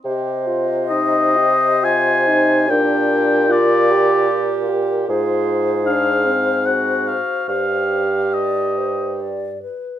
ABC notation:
X:1
M:3/4
L:1/8
Q:1/4=72
K:Cm
V:1 name="Oboe"
z2 e2 a2 | g2 d3 z | z2 f2 _g f | f2 e2 z2 |]
V:2 name="Flute"
e6 | B6 | c6- | c2 d c d =B |]
V:3 name="Clarinet"
c6 | G6 | A3 z _G2 | G4- G z |]
V:4 name="French horn"
G F E G F E | D2 F G F G | F2 D C2 z | G4- G z |]
V:5 name="Bassoon" clef=bass
C,6 | B,,6 | A,,4- A,, z | G,,4- G,, z |]